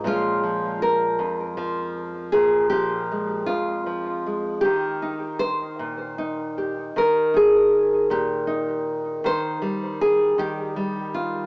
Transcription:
0, 0, Header, 1, 2, 480
1, 0, Start_track
1, 0, Tempo, 765306
1, 23, Time_signature, 6, 3, 24, 8
1, 7190, End_track
2, 0, Start_track
2, 0, Title_t, "Nylon-string guitar"
2, 0, Program_c, 0, 24
2, 26, Note_on_c, 0, 46, 78
2, 33, Note_on_c, 0, 53, 50
2, 37, Note_on_c, 0, 56, 53
2, 40, Note_on_c, 0, 61, 52
2, 44, Note_on_c, 0, 65, 101
2, 269, Note_off_c, 0, 53, 0
2, 271, Note_on_c, 0, 53, 58
2, 510, Note_off_c, 0, 65, 0
2, 515, Note_on_c, 0, 70, 90
2, 741, Note_off_c, 0, 46, 0
2, 746, Note_on_c, 0, 41, 62
2, 983, Note_off_c, 0, 53, 0
2, 985, Note_on_c, 0, 53, 70
2, 1440, Note_off_c, 0, 61, 0
2, 1454, Note_off_c, 0, 70, 0
2, 1456, Note_on_c, 0, 68, 86
2, 1462, Note_off_c, 0, 41, 0
2, 1464, Note_on_c, 0, 46, 73
2, 1689, Note_off_c, 0, 68, 0
2, 1691, Note_on_c, 0, 67, 98
2, 1706, Note_off_c, 0, 53, 0
2, 1709, Note_on_c, 0, 53, 65
2, 1945, Note_off_c, 0, 56, 0
2, 1953, Note_on_c, 0, 56, 43
2, 2170, Note_off_c, 0, 67, 0
2, 2173, Note_on_c, 0, 65, 83
2, 2183, Note_off_c, 0, 46, 0
2, 2187, Note_on_c, 0, 41, 61
2, 2421, Note_off_c, 0, 53, 0
2, 2423, Note_on_c, 0, 53, 61
2, 2666, Note_off_c, 0, 56, 0
2, 2674, Note_on_c, 0, 56, 40
2, 2891, Note_on_c, 0, 67, 90
2, 2904, Note_off_c, 0, 65, 0
2, 2910, Note_off_c, 0, 53, 0
2, 2911, Note_off_c, 0, 41, 0
2, 2913, Note_off_c, 0, 56, 0
2, 2913, Note_on_c, 0, 51, 78
2, 3151, Note_on_c, 0, 63, 61
2, 3383, Note_on_c, 0, 72, 94
2, 3633, Note_on_c, 0, 46, 60
2, 3869, Note_off_c, 0, 67, 0
2, 3875, Note_off_c, 0, 63, 0
2, 3878, Note_on_c, 0, 63, 70
2, 4126, Note_on_c, 0, 67, 44
2, 4328, Note_off_c, 0, 46, 0
2, 4353, Note_off_c, 0, 72, 0
2, 4363, Note_off_c, 0, 51, 0
2, 4366, Note_on_c, 0, 51, 69
2, 4377, Note_on_c, 0, 70, 91
2, 4600, Note_off_c, 0, 63, 0
2, 4602, Note_on_c, 0, 63, 62
2, 4616, Note_off_c, 0, 67, 0
2, 4619, Note_on_c, 0, 68, 109
2, 5080, Note_on_c, 0, 46, 57
2, 5084, Note_off_c, 0, 68, 0
2, 5085, Note_off_c, 0, 70, 0
2, 5087, Note_on_c, 0, 67, 95
2, 5310, Note_off_c, 0, 63, 0
2, 5312, Note_on_c, 0, 63, 67
2, 5766, Note_off_c, 0, 46, 0
2, 5796, Note_off_c, 0, 51, 0
2, 5796, Note_on_c, 0, 51, 72
2, 5798, Note_off_c, 0, 67, 0
2, 5808, Note_on_c, 0, 72, 105
2, 6032, Note_on_c, 0, 55, 58
2, 6277, Note_off_c, 0, 72, 0
2, 6281, Note_on_c, 0, 68, 94
2, 6507, Note_off_c, 0, 51, 0
2, 6510, Note_on_c, 0, 51, 60
2, 6512, Note_off_c, 0, 68, 0
2, 6519, Note_on_c, 0, 67, 89
2, 6743, Note_off_c, 0, 55, 0
2, 6750, Note_on_c, 0, 55, 65
2, 6989, Note_on_c, 0, 65, 72
2, 7008, Note_off_c, 0, 63, 0
2, 7190, Note_off_c, 0, 51, 0
2, 7190, Note_off_c, 0, 55, 0
2, 7190, Note_off_c, 0, 65, 0
2, 7190, Note_off_c, 0, 67, 0
2, 7190, End_track
0, 0, End_of_file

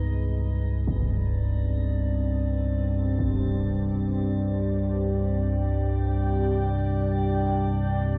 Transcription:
0, 0, Header, 1, 5, 480
1, 0, Start_track
1, 0, Tempo, 500000
1, 7856, End_track
2, 0, Start_track
2, 0, Title_t, "Ambient pad"
2, 0, Program_c, 0, 92
2, 0, Note_on_c, 0, 59, 74
2, 0, Note_on_c, 0, 68, 73
2, 0, Note_on_c, 0, 71, 83
2, 848, Note_off_c, 0, 68, 0
2, 855, Note_on_c, 0, 60, 74
2, 1313, Note_on_c, 0, 67, 67
2, 4065, Note_on_c, 0, 79, 83
2, 4152, Note_on_c, 0, 74, 81
2, 4398, Note_off_c, 0, 71, 0
2, 4403, Note_off_c, 0, 59, 0
2, 7856, Note_off_c, 0, 60, 0
2, 7856, Note_off_c, 0, 67, 0
2, 7856, Note_off_c, 0, 74, 0
2, 7856, Note_off_c, 0, 79, 0
2, 7856, End_track
3, 0, Start_track
3, 0, Title_t, "Synth drone"
3, 0, Program_c, 1, 95
3, 0, Note_on_c, 1, 63, 76
3, 827, Note_on_c, 1, 62, 70
3, 851, Note_off_c, 1, 63, 0
3, 7856, Note_off_c, 1, 62, 0
3, 7856, End_track
4, 0, Start_track
4, 0, Title_t, "Synth drone"
4, 0, Program_c, 2, 95
4, 0, Note_on_c, 2, 36, 68
4, 0, Note_on_c, 2, 43, 60
4, 7856, Note_off_c, 2, 36, 0
4, 7856, Note_off_c, 2, 43, 0
4, 7856, End_track
5, 0, Start_track
5, 0, Title_t, "Impact"
5, 0, Program_c, 3, 103
5, 839, Note_on_c, 3, 60, 66
5, 1060, Note_off_c, 3, 60, 0
5, 3060, Note_on_c, 3, 60, 48
5, 3280, Note_off_c, 3, 60, 0
5, 7856, End_track
0, 0, End_of_file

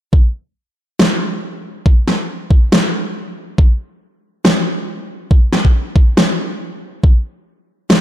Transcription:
0, 0, Header, 1, 2, 480
1, 0, Start_track
1, 0, Tempo, 431655
1, 146, Time_signature, 4, 2, 24, 8
1, 8905, End_track
2, 0, Start_track
2, 0, Title_t, "Drums"
2, 143, Note_on_c, 9, 36, 111
2, 255, Note_off_c, 9, 36, 0
2, 1106, Note_on_c, 9, 38, 109
2, 1217, Note_off_c, 9, 38, 0
2, 2066, Note_on_c, 9, 36, 120
2, 2177, Note_off_c, 9, 36, 0
2, 2308, Note_on_c, 9, 38, 58
2, 2419, Note_off_c, 9, 38, 0
2, 2786, Note_on_c, 9, 36, 101
2, 2897, Note_off_c, 9, 36, 0
2, 3028, Note_on_c, 9, 38, 111
2, 3139, Note_off_c, 9, 38, 0
2, 3985, Note_on_c, 9, 36, 119
2, 4096, Note_off_c, 9, 36, 0
2, 4946, Note_on_c, 9, 38, 114
2, 5057, Note_off_c, 9, 38, 0
2, 5903, Note_on_c, 9, 36, 119
2, 6014, Note_off_c, 9, 36, 0
2, 6145, Note_on_c, 9, 38, 59
2, 6256, Note_off_c, 9, 38, 0
2, 6280, Note_on_c, 9, 36, 60
2, 6391, Note_off_c, 9, 36, 0
2, 6623, Note_on_c, 9, 36, 102
2, 6734, Note_off_c, 9, 36, 0
2, 6864, Note_on_c, 9, 38, 112
2, 6975, Note_off_c, 9, 38, 0
2, 7823, Note_on_c, 9, 36, 116
2, 7934, Note_off_c, 9, 36, 0
2, 8784, Note_on_c, 9, 38, 113
2, 8895, Note_off_c, 9, 38, 0
2, 8905, End_track
0, 0, End_of_file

